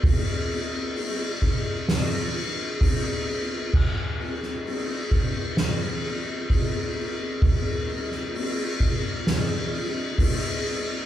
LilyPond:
\new DrumStaff \with { instrumentName = "Drums" } \drummode { \time 4/4 \tempo 4 = 65 <bd cymr>8 cymr8 cymr8 <bd cymr>8 <cymr sn>8 cymr8 <bd cymr>8 cymr8 | <cymc bd>8 cymr16 sn16 cymr8 <bd cymr>8 <cymr sn>8 cymr8 <bd cymr>8 cymr8 | <bd cymr>8 cymr16 sn16 cymr8 <bd cymr>8 <cymr sn>8 cymr8 <bd cymr>8 cymr8 | }